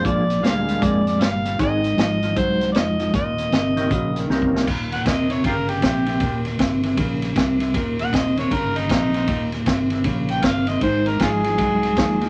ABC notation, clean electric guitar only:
X:1
M:4/4
L:1/8
Q:"Swing" 1/4=156
K:Ebmix
V:1 name="Clean electric guitar" clef=bass
[B,,F,]2 [B,,G,] [B,,G,] [B,,A,]2 [B,,G,] [B,,G,] | [A,,E,]2 [A,,F,] [A,,F,] [A,,_G,]2 [A,,F,] [A,,F,] | [E,,B,,]2 [E,,C,] [E,,C,] [E,,D,]2 [E,,C,] [E,,C,] | [E,,B,,]2 [E,,C,] [E,,C,] [E,,D,]2 [E,,C,] [E,,C,] |
[E,,B,,]2 [E,,C,] [E,,C,] [E,,D,]2 [E,,C,] [E,,C,] | [E,,B,,]2 [E,,C,] [E,,C,] [E,,D,]2 [E,,C,] [E,,C,] | [E,,B,,]2 [E,,C,] [E,,C,] [E,,D,]2 [E,,C,] [E,,C,] | [A,,E,]2 [A,,F,] [A,,F,] [A,,_G,]2 [A,,F,] [A,,F,] |]